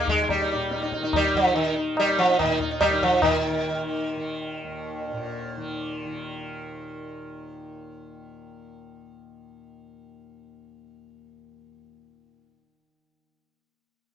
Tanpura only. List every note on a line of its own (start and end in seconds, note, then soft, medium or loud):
0.00 0.53 A#2 medium
0.00 0.99 D#3 medium
0.05 1.94 D#2 medium
0.53 2.42 A#2 medium
0.99 1.48 D#3 medium
1.48 2.89 D#3 medium
1.95 4.64 D#2 medium
2.43 3.22 A#2 medium
2.89 3.70 D#3 medium
3.22 5.12 A#2 medium
3.70 4.17 D#3 medium
4.17 5.57 D#3 medium
4.64 11.79 D#2 medium
5.12 12.27 A#2 medium
5.57 6.05 D#3 medium
6.05 13.20 D#3 medium